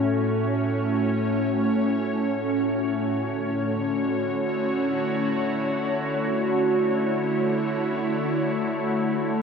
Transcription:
Already playing: A2 A3 C#4 F#4 C#5
3.16 D3
3.54 F#4
3.86 A3
4.28 E4

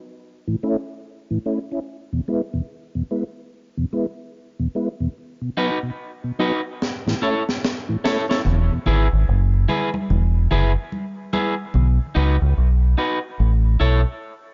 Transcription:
0.48 A2 E3
0.63 A3 C#4 E4
1.30 A2 E3
1.46 A3 C#4 E4
1.72 C#4 E4
2.13 E2 B2
2.28 G#3 B3 E4
2.54 E2 B2
2.95 E2 B2
3.11 G#3 B3 E4
3.77 E2 B2
3.93 G#3 B3 E4
4.59 E2 B2
4.75 G#3 B3 E4
5.00 E2 B2
5.42 B2
5.57 F#3 B3 D#4 F#4 B4
5.83 B2
6.24 B2
6.39 F#3 B3 D#4 F#4 B4
6.82 snare
7.06 A2 E3, snare
7.21 A3 C#4 E4 A4 C#5
7.49 snare
7.65 snare
7.89 A2 E3
8.04 A3 C#4 E4 A4 C#5, snare
8.29 C#4 E4 A4 C#5, snare
8.45 E1, low conga
8.71 E2 B2
8.86 G#1 E4 G#4 B4, low conga
9.13 G#1
9.29 F#1
9.69 E4 G#4 B4, high conga, low conga
9.94 muted clean electric guitar stroke, high conga
10.10 E1, high conga, low conga
10.51 F#1 E4 G#4 B4, low conga
10.92 high conga
11.33 E4 G#4 B4, high conga
11.74 B1, low conga
12.15 C#2 D#4 F#4 B4
12.42 C#2
12.57 B1
12.98 D#4 F#4 B4
13.40 A1
13.80 B1 E4 A4 C#5

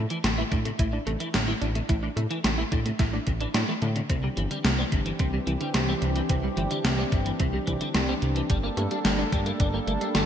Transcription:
0.10 E3, closed hi-hat
0.24 A1 A2 D3, snare, closed hi-hat
0.38 E3 E4
0.51 A2 D4, kick, closed hi-hat
0.65 C3 A3, closed hi-hat
0.79 A1 A2 E4, kick, closed hi-hat
0.93 A2 D4
1.07 A1 C3 A3, closed hi-hat
1.20 E3, closed hi-hat
1.34 A1 A2 D3, snare, closed hi-hat
1.48 E3 E4
1.61 A1 A2 D4, closed hi-hat
1.75 C3 A3, closed hi-hat
1.89 A1 A2 E4, kick, closed hi-hat
2.03 A2 D4
2.16 A2 C3 A3, closed hi-hat
2.30 E3, closed hi-hat
2.44 A1 A2 D3, snare, closed hi-hat
2.58 E3 E4
2.72 A2 D4, kick, closed hi-hat
2.86 C3 A3, closed hi-hat
2.99 A1 A2 E4, kick, snare, closed hi-hat
3.13 A2 D4
3.27 A1 C3 E3, kick, closed hi-hat
3.41 E3 D4, closed hi-hat
3.54 A2 D4, snare, closed hi-hat
3.68 E3 A3
3.82 A2 D3, closed hi-hat
3.96 C3 D3, closed hi-hat
4.10 C2 C3 E3 C4 D4 G4, kick, closed hi-hat
4.23 C3 G3
4.37 G1 E3, closed hi-hat
4.51 D3 G3, closed hi-hat
4.64 C2 C3, snare, closed hi-hat
4.78 G3 C4
4.92 G1 C3, kick, closed hi-hat
5.06 E3, closed hi-hat
5.19 C2 C3 C4, kick, closed hi-hat
5.33 C3 G3
5.47 C2 E3, closed hi-hat
5.61 D3 G3, closed hi-hat
5.74 C2 C3, snare, closed hi-hat
5.88 G3 C4
6.02 C2 C3, closed hi-hat
6.16 E3, closed hi-hat
6.29 C2 C3 C4, kick, closed hi-hat
6.43 C3 G3
6.57 G1 E3, closed hi-hat
6.71 D3 G3, closed hi-hat
6.84 C2 C3, snare, closed hi-hat
6.98 G3 C4
7.12 G1 C3, kick, closed hi-hat
7.26 E3, closed hi-hat
7.40 C2 C3 C4, kick, closed hi-hat
7.53 C3 G3
7.67 C2 E3, kick, closed hi-hat
7.81 D3 G3, closed hi-hat
7.95 C2 C3, snare, closed hi-hat
8.08 G3 C4
8.22 C2 C3, closed hi-hat
8.36 E3, closed hi-hat
8.50 G1 G3 A#3 D4 A4, kick, closed hi-hat
8.63 G3 A#3
8.77 G2 A3 A#3, closed hi-hat
8.91 G3 D4, closed hi-hat
9.05 G1 D3 G3, snare, closed hi-hat
9.19 D4
9.32 G2 D3 G3, kick, closed hi-hat
9.46 A3 A#3, closed hi-hat
9.60 G1 G3 D4, kick, closed hi-hat
9.74 G3 A#3
9.87 G1 A3 A#3, closed hi-hat
10.01 G3 D4, closed hi-hat
10.15 G1 D3 G3, snare, closed hi-hat

